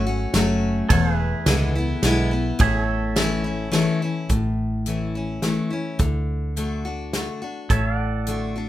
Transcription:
Already playing: G#1 F#2 A4 C#5 F#5
0.07 C#4 F#4
0.33 F#1 F#3 A3 C#4 F#4, snare, ride
0.89 E1 E2 A4 C#5 F#5, kick, ride
1.09 G#4
1.15 B4 E5
1.46 C#2 D3 G#3 B3 E4, snare, ride
1.75 B3 E4
2.03 B1 D3 G#3 B3 E4, snare, ride
2.31 B3 E4
2.59 A1 A2 G#4 C#5, kick, ride
2.63 E5
2.81 A4
3.16 E3 A3 C#4 E4, snare, ride
3.44 C#4 E4
3.72 E3 A3 C#4 E4, snare, ride
4.02 C#4 E4
4.29 A1 A2, kick, closed hi-hat
4.86 E3 A3 C#4 E4, closed hi-hat
5.15 C#4 E4
5.42 E3 A3 C#4 E4, snare, closed hi-hat
5.70 C#4 E4
5.99 D2 D3, kick, closed hi-hat
6.56 D3 A3 D4 F#4, closed hi-hat
6.85 D4 F#4
7.13 D3 A3 D4 F#4, snare, closed hi-hat
7.42 D4 F#4
7.70 A1 A2 A4 C#5 E5, kick, closed hi-hat
7.91 D5
7.98 F#5
8.27 D3 A3 D4 F#4, closed hi-hat
8.56 D4 F#4

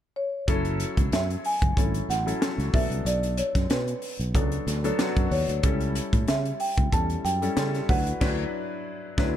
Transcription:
0.16 C#5
0.48 F#1 F#3 C#4 E4 A4, kick, closed hi-hat
0.65 closed hi-hat
0.80 closed hi-hat
0.97 C#2, kick, closed hi-hat
1.12 F#2 E5, snare, closed hi-hat
1.30 closed hi-hat
1.45 G#5, open hi-hat
1.62 F#1, kick, closed hi-hat
1.77 G#1 F#3 C#4 E4 A4, kick, closed hi-hat
1.94 closed hi-hat
2.09 A1 F#5, snare, closed hi-hat
2.26 F#3 C#4 E4 A4, closed hi-hat
2.41 F#3 C#4 E4 A4, snare, closed hi-hat
2.58 C#2, snare, closed hi-hat
2.73 B1 F#3 B3 D4 A4 E5, kick, open hi-hat
2.90 C2, closed hi-hat
3.05 B1 D5, closed hi-hat
3.23 closed hi-hat
3.37 C#5, closed hi-hat
3.55 F#2, kick, snare, closed hi-hat
3.70 B2 B4, snare, closed hi-hat
3.88 closed hi-hat
4.02 open hi-hat
4.19 B1, closed hi-hat
4.34 C#2 F#3 B3 D4 A4, kick, closed hi-hat
4.52 closed hi-hat
4.67 D2, snare, closed hi-hat
4.84 F#3 B3 D4 A4, closed hi-hat
4.99 F#3 B3 D4 F#4, snare, closed hi-hat
5.17 F#2, kick, closed hi-hat
5.31 D#2 C#5, open hi-hat
5.49 D2, closed hi-hat
5.63 C#2 G3 C#4 E4 A4, kick, closed hi-hat
5.80 closed hi-hat
5.95 closed hi-hat
6.13 A2, kick, closed hi-hat
6.28 C#3 E5, snare, closed hi-hat
6.45 closed hi-hat
6.60 G5, open hi-hat
6.78 C#2, kick, closed hi-hat
6.92 E2 G3 C#4 E4 A4 A5, kick, closed hi-hat
7.10 closed hi-hat
7.25 F#2 G5, closed hi-hat
7.42 G3 C#4 E4 A4, closed hi-hat
7.56 C#3 G3 C#4 E4 A4, snare, closed hi-hat
7.74 snare, closed hi-hat
7.89 D2 F#3 D4 E4 B4 F#5, kick, open hi-hat
8.07 closed hi-hat
8.21 D2 F#3 D4 E4 B4, kick, snare, crash
9.18 D2 F#3 D4 E4 B4, kick, snare

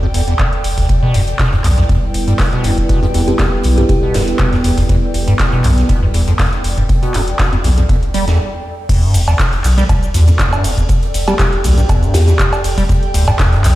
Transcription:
Already playing: A4 D5 G5
0.03 F2
0.14 E1 E2, open hi-hat
0.28 E2, closed hi-hat
0.39 E2, kick, clap, closed hi-hat
0.53 closed hi-hat
0.64 E1, open hi-hat
0.78 D2, kick, open hi-hat
0.89 G3 B3 E4 B4, kick, closed hi-hat
1.03 B2
1.14 E1 E2, closed hi-hat, open hi-hat
1.27 closed hi-hat
1.39 B2, kick, snare, clap, closed hi-hat
1.53 E1 F2, closed hi-hat
1.64 B1 E2, clap, closed hi-hat, open hi-hat
1.78 F2, snare, closed hi-hat
1.89 E2, kick, closed hi-hat
2.14 E1, closed hi-hat, open hi-hat
2.28 G2, closed hi-hat
2.38 kick, snare, clap, closed hi-hat, open hi-hat
2.53 B2, closed hi-hat
2.64 E1 E2, closed hi-hat, open hi-hat
2.78 kick, closed hi-hat
2.89 B2, kick, closed hi-hat
3.03 F2, closed hi-hat
3.14 E1 E2, closed hi-hat, open hi-hat
3.28 F2 G4, closed hi-hat
3.39 E2, kick, snare, clap, closed hi-hat
3.53 E1
3.63 B1, closed hi-hat, open hi-hat
3.78 G2 G4, closed hi-hat
3.89 G4, kick, closed hi-hat
4.03 B2
4.14 E1 E2, snare, closed hi-hat, open hi-hat
4.28 closed hi-hat
4.39 B2, kick, clap, closed hi-hat
4.53 F2, snare, closed hi-hat
4.64 E1 E2, closed hi-hat, open hi-hat
4.78 F2, kick, open hi-hat
4.89 E2, kick, closed hi-hat
5.14 E1, closed hi-hat, open hi-hat
5.28 G2, closed hi-hat
5.39 kick, snare, clap, closed hi-hat
5.52 E1 B2, closed hi-hat
5.64 B1 E2, clap, closed hi-hat, open hi-hat
5.78 snare, closed hi-hat
5.89 B2, kick, closed hi-hat
6.03 F2
6.14 E1 E2, closed hi-hat, open hi-hat
6.27 F2, closed hi-hat
6.39 E2, kick, snare, clap, closed hi-hat, open hi-hat
6.53 closed hi-hat
6.64 E1, closed hi-hat, open hi-hat
6.78 G2, kick, closed hi-hat
6.89 kick, closed hi-hat
7.03 B2, closed hi-hat
7.14 E1 E2, clap, closed hi-hat, open hi-hat
7.28 closed hi-hat
7.39 B2, kick, snare, clap, closed hi-hat
7.53 E1 F2, closed hi-hat
7.64 B1 E2, snare, closed hi-hat, open hi-hat
7.78 F2, closed hi-hat
7.89 E2, kick, closed hi-hat
8.03 closed hi-hat
8.14 E1 G3, closed hi-hat, open hi-hat
8.28 E2, snare, closed hi-hat
8.89 E2 A4, kick, closed hi-hat, crash, shaker
8.99 G2 D5, closed hi-hat
9.14 E1 E2, closed hi-hat, open hi-hat, ride, shaker
9.28 E2, closed hi-hat, cowbell, shaker
9.39 kick, snare, clap, closed hi-hat, shaker
9.53 E1, closed hi-hat
9.64 B1, clap, closed hi-hat, open hi-hat, ride, shaker
9.78 G3, snare, closed hi-hat, shaker
9.89 E2, kick, closed hi-hat, cowbell, shaker
10.03 closed hi-hat, shaker
10.14 D2 E2, closed hi-hat, open hi-hat, ride, shaker
10.28 G2, closed hi-hat, shaker
10.33 G5
10.39 E2, kick, snare, clap, closed hi-hat, shaker
10.53 G2, closed hi-hat, cowbell, shaker
10.64 E1 E2, closed hi-hat, open hi-hat, ride, shaker
10.78 E2, kick, closed hi-hat, shaker
10.89 kick, closed hi-hat, shaker
11.02 closed hi-hat
11.14 E1, closed hi-hat, open hi-hat, ride, shaker
11.28 G3 G4, closed hi-hat, cowbell, shaker
11.39 E2, kick, snare, clap, closed hi-hat, shaker
11.53 E1, closed hi-hat
11.64 B1 D2, closed hi-hat, open hi-hat, ride, shaker
11.78 G2, closed hi-hat, shaker
11.89 E2, kick, closed hi-hat, cowbell, shaker
12.03 G2, closed hi-hat, shaker
12.14 E2 G4, snare, closed hi-hat, open hi-hat, ride, shaker
12.28 E2 G4, closed hi-hat, shaker
12.39 kick, clap, closed hi-hat, shaker
12.52 snare, closed hi-hat, cowbell, shaker
12.64 E1, closed hi-hat, open hi-hat, ride, shaker
12.78 G3, kick, open hi-hat, shaker
12.89 E2, kick, closed hi-hat, shaker
13.03 closed hi-hat
13.14 E1 D2, closed hi-hat, open hi-hat, ride, shaker
13.28 G2, closed hi-hat, cowbell, shaker
13.39 E2, kick, snare, clap, closed hi-hat, shaker
13.53 E1 G2, closed hi-hat
13.64 B1 E2, clap, closed hi-hat, open hi-hat, ride, shaker

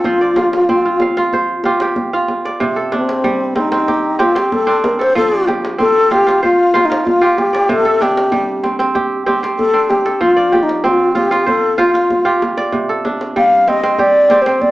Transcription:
Already playing: G3 C4 D4 F4 G4 A4 C5
0.04 F3, djembe bass
0.21 D5
0.36 F4, djembe tone
0.53 djembe slap
0.69 C4, djembe bass
0.85 F4, djembe slap
1.00 F5, djembe tone
1.17 F4, djembe slap
1.33 C5, djembe slap, djembe bass
1.48 djembe slap
1.64 F4 G4, djembe tone
1.80 G4, djembe slap
1.96 djembe bass
2.13 F4 F5
2.28 djembe tone
2.45 D5, djembe slap
2.60 C3, djembe bass
2.76 A4
2.92 C4 D4, djembe tone
3.09 djembe slap
3.24 G3, djembe bass
3.41 djembe slap
3.56 C4 D#4, djembe tone
3.72 C4, djembe slap
3.88 G4, djembe slap, djembe bass
4.04 djembe slap
4.19 C4 F4 G4, djembe tone
4.35 C4 G4, djembe slap
4.52 A4, djembe bass
4.67 C4 D4, djembe slap
4.84 A#4, djembe slap, djembe tone
4.99 A4 C5, djembe slap
5.15 F3 A4, djembe bass
5.31 D5
5.47 G4, djembe tone
5.65 djembe slap
5.78 C4 A4, djembe bass
5.97 djembe slap
6.11 F4 G4, djembe tone
6.26 F4, djembe slap
6.43 F4 C5, djembe slap, djembe bass
6.60 djembe slap
6.74 F4 C5, djembe tone
6.85 D#4
6.90 F4, djembe slap
7.05 F4, djembe bass
7.21 F4 G4, djembe slap
7.38 G4, djembe slap, djembe tone
7.53 D5, djembe slap
7.69 C3 A4, djembe bass
7.85 A4
8.01 D4 G4, djembe tone
8.17 djembe slap
8.32 G3, djembe bass
8.49 djembe slap
8.63 C4, djembe tone
8.79 C4, djembe slap
8.95 G4, djembe slap, djembe bass
9.12 djembe slap
9.26 C4 G4, djembe tone
9.43 C4, djembe slap
9.58 A4, djembe bass
9.74 C4 D4, djembe slap
9.89 G4, djembe slap, djembe tone
10.06 A4, djembe slap
10.21 F3 F4, djembe bass
10.37 D5
10.52 G4, djembe tone
10.63 D#4
10.69 djembe slap
10.84 C4 F4, djembe slap, djembe bass
11.00 djembe slap
11.15 F4 G4, djembe tone
11.31 F4, djembe slap
11.46 A4 C5, djembe bass
11.64 djembe slap
11.78 F4 C5, djembe slap, djembe tone
11.94 F4, djembe slap
12.10 djembe slap, djembe bass
12.25 F4 G4
12.42 djembe tone
12.57 D5, djembe slap
12.72 C3, djembe bass
12.89 A4
13.05 D4, djembe tone
13.21 djembe slap
13.36 G3 F5, djembe bass
13.52 djembe slap
13.68 C4 D#5, djembe tone
13.83 C4, djembe slap
13.99 G4 D5, djembe slap, djembe bass
14.15 djembe slap
14.30 C4 G4, djembe tone
14.42 C5
14.46 C4, djembe slap
14.61 D5, djembe bass

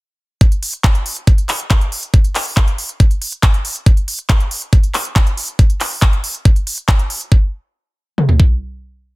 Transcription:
0.41 kick, closed hi-hat
0.52 closed hi-hat
0.63 open hi-hat
0.73 closed hi-hat
0.84 kick, clap, closed hi-hat
0.95 closed hi-hat
1.06 open hi-hat
1.17 closed hi-hat
1.27 kick, closed hi-hat
1.38 closed hi-hat
1.49 clap, open hi-hat
1.60 closed hi-hat
1.70 kick, clap, closed hi-hat
1.81 closed hi-hat
1.92 open hi-hat
2.03 closed hi-hat
2.14 kick, closed hi-hat
2.24 closed hi-hat
2.35 clap, open hi-hat
2.46 open hi-hat
2.57 kick, clap
2.68 closed hi-hat
2.78 open hi-hat
2.89 closed hi-hat
3.00 kick, closed hi-hat
3.11 closed hi-hat
3.22 open hi-hat
3.32 closed hi-hat
3.43 kick, clap, closed hi-hat
3.54 closed hi-hat
3.65 open hi-hat
3.76 closed hi-hat
3.86 kick, closed hi-hat
3.97 closed hi-hat
4.08 open hi-hat
4.19 closed hi-hat
4.29 kick, clap, closed hi-hat
4.40 closed hi-hat
4.51 open hi-hat
4.62 closed hi-hat
4.73 kick, closed hi-hat
4.83 closed hi-hat
4.94 clap, open hi-hat
5.05 closed hi-hat
5.16 kick, clap, closed hi-hat
5.27 closed hi-hat
5.37 open hi-hat
5.48 closed hi-hat
5.59 kick, closed hi-hat
5.70 closed hi-hat
5.81 clap, open hi-hat
5.91 open hi-hat
6.02 kick, clap
6.13 closed hi-hat
6.24 open hi-hat
6.35 closed hi-hat
6.45 kick, closed hi-hat
6.56 closed hi-hat
6.67 open hi-hat
6.78 closed hi-hat
6.88 kick, clap, closed hi-hat
6.99 closed hi-hat
7.10 open hi-hat
7.21 closed hi-hat
7.32 kick
8.18 mid tom
8.29 floor tom
8.40 kick

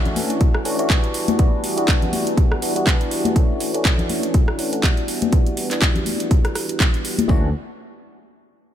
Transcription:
Already playing: E3 A3 C#4 D4 F#4
0.05 closed hi-hat, tambourine, low conga
0.16 open hi-hat, high conga
0.30 closed hi-hat, tambourine
0.41 kick, closed hi-hat
0.55 cross-stick
0.65 E3 A3 C#4 D4 F#4, open hi-hat
0.79 E3 A3 C#4 D4 F#4, closed hi-hat, tambourine
0.89 E3 G3 B3 D4 F#4, kick, clap, closed hi-hat
1.04 closed hi-hat, tambourine
1.14 open hi-hat
1.28 closed hi-hat, tambourine, high conga
1.38 E3 G3 B3 D4 F#4, kick, closed hi-hat
1.53 tambourine
1.64 open hi-hat
1.76 E3 G3 B3 D4 F#4, closed hi-hat, tambourine
1.88 kick, clap, closed hi-hat
2.02 closed hi-hat, tambourine, low conga
2.13 open hi-hat, high conga
2.27 closed hi-hat, tambourine
2.37 kick, closed hi-hat
2.52 cross-stick, tambourine
2.61 E3 G3 B3 D4 F#4, open hi-hat
2.75 E3 G3 B3 D4 F#4, closed hi-hat, tambourine
2.87 kick, clap, closed hi-hat
3.01 closed hi-hat
3.11 open hi-hat
3.25 closed hi-hat, tambourine, high conga
3.36 C#4 D4, kick, closed hi-hat, tambourine
3.49 tambourine
3.60 open hi-hat
3.73 E3 A3 C#4 D4 F#4, closed hi-hat, tambourine
3.85 kick, clap, closed hi-hat
3.98 closed hi-hat, tambourine, low conga
4.09 open hi-hat, high conga
4.23 closed hi-hat, tambourine
4.34 kick, closed hi-hat, tambourine
4.48 cross-stick
4.58 E3 A3 C#4 D4 F#4, open hi-hat
4.72 E3 A3 C#4 D4 F#4, closed hi-hat, tambourine
4.83 E3 G3 B3, kick, clap, closed hi-hat
4.97 closed hi-hat
5.08 open hi-hat
5.22 closed hi-hat, tambourine, high conga
5.32 E3, kick, closed hi-hat
5.46 closed hi-hat, tambourine
5.57 open hi-hat
5.70 E3 G3 B3 D4 F#4, clap, closed hi-hat, tambourine
5.82 kick, clap, closed hi-hat
5.95 closed hi-hat, tambourine, low conga
6.06 open hi-hat, high conga
6.20 closed hi-hat, tambourine
6.31 kick, closed hi-hat
6.45 cross-stick, closed hi-hat
6.55 E3 G3 B3 D4 F#4, cross-stick, open hi-hat
6.69 E3 G3 B3 D4 F#4, closed hi-hat, tambourine
6.80 kick, clap, closed hi-hat
6.94 closed hi-hat
7.04 E3 G3 B3 D4 F#4, open hi-hat
7.18 closed hi-hat, tambourine, high conga
7.28 D2 E3 A3 C#4 D4 F#4, kick

